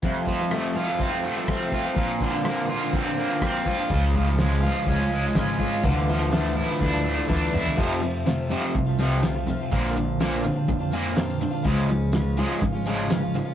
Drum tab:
CC |----------------|----------------|----------------|----------------|
HH |x---x---x---x---|x---x---x---x---|x---x---x---x---|x---x---x-------|
SD |----r-------r---|----r-------r---|----o-------o---|----o-------o---|
T2 |----------------|----------------|----------------|--------------o-|
FT |----------------|----------------|----------------|---------------o|
BD |o-o-----o---o-o-|o-o-----o---o-o-|o-o-----o---o-o-|o-------o---o---|

CC |x---------------|----------------|----------------|
HH |--x-x-x-x-x-x-x-|x-x-x-x-x-x-x-x-|x-x-x-x-x-x-x-x-|
SD |----o-------o---|----o-------oo--|----o-------o---|
T2 |----------------|----------------|----------------|
FT |----------------|----------------|----------------|
BD |o-------o-------|o-------o-------|o-------o-------|